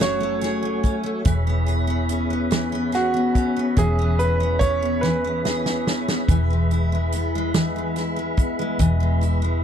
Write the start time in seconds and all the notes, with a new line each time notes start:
Already playing: F#1 A3 C#4 F#4 G#4 C#5 G#5
0.00 F#3 C#5, snare, closed hi-hat
0.20 A3
0.41 G#4, snare, closed hi-hat
0.63 A3
0.83 C#4, kick, closed hi-hat
1.03 A3
1.25 E1 E3 G#4 E5 B5, kick, closed hi-hat
1.47 B3
1.66 G#4, closed hi-hat
1.87 B3
2.09 C#4, closed hi-hat
2.30 B3
2.51 E3, snare, closed hi-hat
2.72 B3
2.92 F#4 G#4, snare, closed hi-hat
3.14 B3
3.35 C#4, kick, closed hi-hat
3.56 B3
3.77 E1 E3 G#4, kick, closed hi-hat
3.99 B3
4.19 G#4 B4, closed hi-hat
4.40 B3
4.59 C#4 C#5, kick, closed hi-hat
4.82 B3
5.01 E3 B4, snare
5.24 B3
5.45 G#4, snare
5.66 B3, snare
5.87 C#4, snare
6.08 B3, snare
6.28 E1 E3 B4, kick, closed hi-hat
6.50 G#3
6.71 E4, closed hi-hat
6.92 G#3
7.12 B3, closed hi-hat
7.35 G#3
7.54 E3, snare, closed hi-hat
7.76 G#3
7.96 E4, snare, closed hi-hat
8.16 G#3
8.37 B3, kick, closed hi-hat
8.59 G#3
8.79 E1 E3, kick, closed hi-hat
9.00 G#3
9.21 E4, closed hi-hat
9.42 G#3